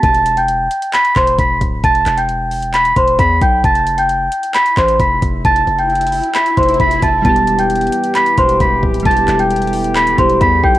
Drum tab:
HH |x-x-x-x-x---x-x-x-x-x-x-x---x---|x-x-x-x-x---o-x-x-x-x-x-x---x---|x-x-x-x-x---x-x-x-x-x-x-x---x---|x-x-x-x-xxxxo-x-x-x-xxxxx-x-x---|
CP |----------------x---x-----------|----x-----------x---------------|----------------x---x-----------|----------------x---------------|
BD |o-------------------o---o---o---|o-------------------o---o---o---|o-------------------o---o---o---|o-------------------o---o---o---|

HH |x-x-x-x-xxxxx-x-x-x-x-x-x-----xx|xxx-x-x-xxxxo-x-x-x-x-x-x-----x-|
CP |----------------x---------------|----x-----------x---------------|
BD |o-------------------o---o---o---|o-------------------o---o---o---|